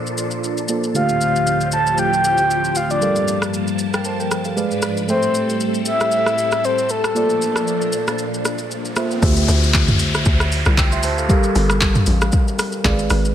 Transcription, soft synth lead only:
0.95 F5
1.73 A5
1.99 G5
2.76 F5
2.91 D5
5.09 C5
5.87 E5
6.65 C5
6.90 A4

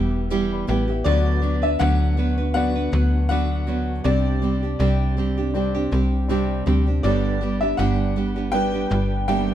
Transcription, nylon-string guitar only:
Already playing: G3 B3 E4 G4
0.30 E3 G3 B3 E4 G4
0.67 G3 B3 E4 G4
0.88 B3 E4 G4
1.05 D3 F#3 B3 D4 B4
1.42 F#3 B3 D4 B4
1.62 B3 D4 B4
1.79 D3 F#3 B3 D4 B4
2.17 F#3 B3 D4 B4
2.38 B3 D4 B4
2.55 F#3 B3 D4 B4
2.75 B3 D4 B4
2.92 F#3 B3 D4 B4
3.30 D3 F#3 B3 D4 B4
3.67 F#3 B3 D4 B4
4.04 C3 G3 C4 D4 G4
4.42 G3 C4 D4 G4
4.63 C4 D4 G4
4.80 C3 G3 C4 D4 G4
5.17 G3 C4 D4 G4
5.38 C4 D4 G4
5.54 G3 C4 D4 G4
5.75 C4 D4 G4
5.91 G3 C4 D4 G4
6.29 C3 G3 C4 D4 G4
6.66 G3 C4 D4 G4
6.87 C4 D4 G4
7.04 G2 D3 G3 B3 D4 G4
7.41 G3 B3 D4 G4
7.62 G3 B3 D4 G4
7.78 G2 D3 G3 B3 D4 G4
8.16 G3 B3 D4 G4
8.36 G3 B3 D4 G4
8.52 G3 B3 D4 G4
8.74 G3 B3 D4 G4
8.90 G3 B3 D4 G4
9.28 G2 D3 G3 B3 D4 G4

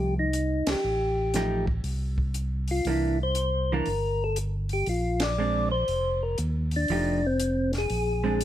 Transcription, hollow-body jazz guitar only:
Already playing: F3 A3 D#4 G4
1.36 F3 A3 D#4 G4
2.87 E3 A#3 D4
3.72 E3 A#3 D4
5.38 G#3 C4 D4
6.90 F3 A3 D#4 G4
8.24 G#3 C4 D4

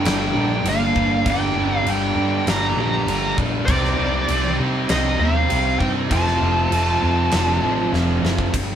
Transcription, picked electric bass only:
0.05 G1
0.35 A#1
0.65 G1
0.95 G1
1.26 G1
1.56 G1
1.85 G1
2.16 G2
2.47 G1
2.77 A#1
3.07 G1
3.38 A#1
3.68 C2
3.98 C2
4.29 C2
4.60 C3
4.90 C2
5.19 D#2
5.51 C2
5.81 G2
6.11 F1
6.41 F1
6.71 F1
7.03 F2
7.33 F1
7.63 A1
7.93 F1
8.23 F#1
8.54 G1

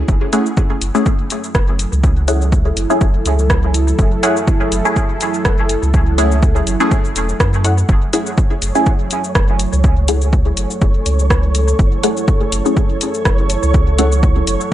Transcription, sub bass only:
0.08 F#1
0.82 F#1
1.55 F#1
1.92 C#2
2.77 F#1
3.01 F#1
3.26 C#2
3.99 F#1
4.72 F#1
5.45 F#1
5.83 C#2
6.67 F#1
7.16 E1
7.40 F#2
7.89 F#1
8.62 F#1
9.35 F#1
9.73 C#2
10.57 F#1
10.82 F#1
11.06 C#2
11.79 F#1
12.52 F#1
13.25 F#1
13.63 C#2
14.47 F#1

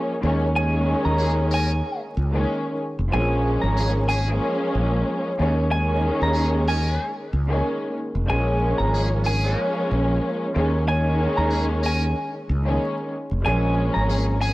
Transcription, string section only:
Already playing: F3 G#3 A#3 C#4
0.21 D#3 G#3 A#3 C#4
0.53 D#3 G#3 A#3 C#4
2.31 D#3 G#3 A#3 C#4
3.09 F3 G#3 A#3 C#4
4.26 F3 G#3 A#3 C#4
5.37 D#3 G#3 A#3 C#4
5.70 D#3 G#3 A#3 C#4
7.47 D#3 G#3 A#3 C#4
8.26 F3 G#3 A#3 C#4
9.42 F3 G#3 A#3 C#4
10.53 D#3 G#3 A#3 C#4
10.86 D#3 G#3 A#3 C#4
12.64 D#3 G#3 A#3 C#4
13.42 F3 G#3 A#3 C#4

